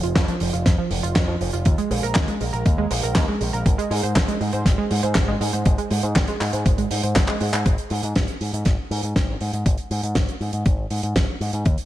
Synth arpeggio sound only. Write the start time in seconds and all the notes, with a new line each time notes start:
0.03 F4
0.28 F3
0.41 F3
0.53 F4
0.78 F3
0.91 F3
1.03 F4
1.28 F3
1.41 F3
1.53 F4
1.78 G#3
1.91 G#3
2.03 A#4
2.28 G#3
2.41 G#3
2.53 A#4
2.78 G#3
2.91 G#3
3.03 A#4
3.28 G#3
3.41 G#3
3.53 A#4
3.78 G#3
3.91 G#3
4.03 C5
4.28 G#3
4.41 G#3
4.53 C5
4.78 G#3
4.91 G#3
5.03 C5
5.28 G#3
5.41 G#3
5.53 C5
5.78 G#3
5.91 G#3
6.03 C5
6.28 G#3
6.41 G#3
6.53 C5
6.78 G#3
6.91 G#3
7.03 C5
7.28 G#3
7.41 G#3
7.54 C5